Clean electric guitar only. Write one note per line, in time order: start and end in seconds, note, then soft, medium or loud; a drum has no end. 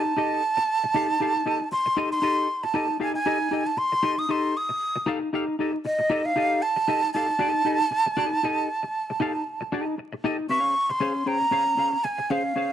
0.00 0.12 D#4 medium
0.05 muted clean electric guitar stroke soft
0.17 0.41 D#4 medium
0.17 0.41 G4 medium
0.17 0.42 A4 medium
0.17 0.42 D#5 loud
0.57 muted clean electric guitar stroke medium
0.83 muted clean electric guitar stroke soft
0.94 1.16 D#4 medium
0.94 1.10 G4 medium
0.94 1.09 A4 loud
0.94 1.09 F5 medium
1.09 muted clean electric guitar stroke soft
1.20 1.41 D#4 medium
1.20 1.35 G4 medium
1.20 1.35 A4 loud
1.20 1.35 F5 medium
1.35 muted clean electric guitar stroke soft
1.46 1.63 D#4 medium
1.46 1.60 G4 medium
1.46 1.60 A4 medium
1.46 1.58 D#5 medium
1.60 muted clean electric guitar stroke medium
1.72 muted clean electric guitar stroke soft
1.86 muted clean electric guitar stroke soft
1.97 2.18 D#4 medium
1.97 2.12 G4 medium
1.97 2.11 A4 medium
1.97 2.10 D#5 loud
2.12 muted clean electric guitar stroke soft
2.22 2.47 D#4 medium
2.22 2.47 G4 medium
2.22 2.47 A4 medium
2.22 2.47 D#5 medium
2.63 muted clean electric guitar stroke medium
2.74 2.96 D#4 medium
2.74 2.89 G4 medium
2.74 2.88 A4 medium
2.74 2.87 D#5 medium
2.89 muted clean electric guitar stroke soft
3.00 3.18 D#4 medium
3.00 3.14 G4 medium
3.00 3.14 A4 medium
3.00 3.14 F5 medium
3.14 muted clean electric guitar stroke medium
3.26 3.47 D#4 medium
3.26 3.41 G4 medium
3.26 3.40 A4 medium
3.26 3.39 D#5 loud
3.40 muted clean electric guitar stroke soft
3.51 3.69 D#4 medium
3.51 3.66 G4 medium
3.51 3.65 A4 medium
3.51 3.64 D#5 medium
3.66 muted clean electric guitar stroke soft
3.77 muted clean electric guitar stroke soft
3.92 muted clean electric guitar stroke soft
4.03 4.25 D#4 medium
4.03 4.17 G4 loud
4.03 4.17 A4 medium
4.03 4.16 D#5 loud
4.17 muted clean electric guitar stroke medium
4.29 4.53 D#4 medium
4.29 4.54 G4 medium
4.29 4.54 A4 medium
4.29 4.54 D#5 medium
4.69 muted clean electric guitar stroke soft
4.96 muted clean electric guitar stroke soft
5.06 5.28 D#4 loud
5.06 5.22 G4 medium
5.06 5.21 A4 loud
5.06 5.21 F5 loud
5.21 muted clean electric guitar stroke soft
5.33 5.54 D#4 medium
5.33 5.47 G4 medium
5.33 5.47 A4 medium
5.33 5.47 F5 medium
5.47 muted clean electric guitar stroke medium
5.59 5.77 D#4 medium
5.59 5.73 G4 medium
5.59 5.73 A4 medium
5.59 5.72 D#5 medium
5.73 muted clean electric guitar stroke medium
5.85 muted clean electric guitar stroke soft
5.99 muted clean electric guitar stroke soft
6.10 6.31 D#4 medium
6.10 6.24 G4 loud
6.10 6.23 A4 loud
6.10 6.23 D#5 loud
6.24 muted clean electric guitar stroke medium
6.36 6.60 D#4 medium
6.36 6.60 G4 loud
6.36 6.61 A4 loud
6.36 6.61 D#5 medium
6.76 muted clean electric guitar stroke soft
6.88 7.09 D#4 medium
6.88 7.03 G4 medium
6.88 7.03 A4 medium
6.88 7.02 D#5 loud
7.03 muted clean electric guitar stroke soft
7.15 7.32 D#4 medium
7.15 7.29 G4 medium
7.15 7.28 A4 medium
7.15 7.28 F5 medium
7.29 muted clean electric guitar stroke soft
7.39 7.61 D#4 medium
7.39 7.54 G4 medium
7.39 7.53 A4 loud
7.39 7.52 D#5 loud
7.54 muted clean electric guitar stroke soft
7.65 7.83 D#4 medium
7.65 7.80 G4 medium
7.65 7.79 A4 medium
7.65 7.79 D#5 medium
7.80 muted clean electric guitar stroke soft
7.91 muted clean electric guitar stroke soft
8.06 muted clean electric guitar stroke soft
8.17 8.38 D#4 medium
8.17 8.32 G4 medium
8.17 8.31 A4 loud
8.17 8.30 D#5 medium
8.31 muted clean electric guitar stroke soft
8.43 8.67 D#4 medium
8.43 8.68 G4 medium
8.43 8.68 A4 medium
8.43 8.68 D#5 loud
8.83 muted clean electric guitar stroke soft
9.10 muted clean electric guitar stroke soft
9.20 9.42 D#4 medium
9.20 9.35 G4 medium
9.20 9.35 A4 medium
9.20 9.35 F5 medium
9.35 muted clean electric guitar stroke soft
9.61 muted clean electric guitar stroke soft
9.72 9.94 D#4 medium
9.72 9.86 G4 medium
9.72 9.86 A4 medium
9.72 9.85 D#5 medium
9.87 muted clean electric guitar stroke soft
9.98 muted clean electric guitar stroke soft
10.12 muted clean electric guitar stroke medium
10.24 10.45 D#4 medium
10.24 10.39 G4 loud
10.24 10.39 A4 loud
10.24 10.38 D#5 loud
10.39 muted clean electric guitar stroke soft
10.49 10.74 C#4 medium
10.49 10.74 G#4 medium
10.49 10.74 C5 medium
10.49 10.75 F5 medium
10.90 muted clean electric guitar stroke soft
11.00 11.22 C#4 medium
11.00 11.15 G#4 medium
11.00 11.14 C5 medium
11.00 11.14 F5 medium
11.15 muted clean electric guitar stroke soft
11.26 11.45 C#4 medium
11.26 11.41 G#4 medium
11.26 11.40 C5 medium
11.26 11.40 G5 medium
11.40 muted clean electric guitar stroke soft
11.51 11.74 C#4 medium
11.51 11.66 G#4 medium
11.51 11.65 C5 medium
11.51 11.65 F5 loud
11.66 muted clean electric guitar stroke soft
11.77 11.96 C#4 medium
11.77 11.93 G#4 medium
11.77 11.92 C5 medium
11.77 11.91 F5 medium
11.93 muted clean electric guitar stroke medium
12.04 muted clean electric guitar stroke soft
12.18 muted clean electric guitar stroke soft
12.30 12.52 C#4 medium
12.30 12.44 G#4 medium
12.30 12.44 C5 loud
12.30 12.43 F5 medium
12.44 muted clean electric guitar stroke soft
12.56 12.73 C#4 medium
12.56 12.73 G#4 medium
12.56 12.73 C5 medium
12.56 12.73 F5 medium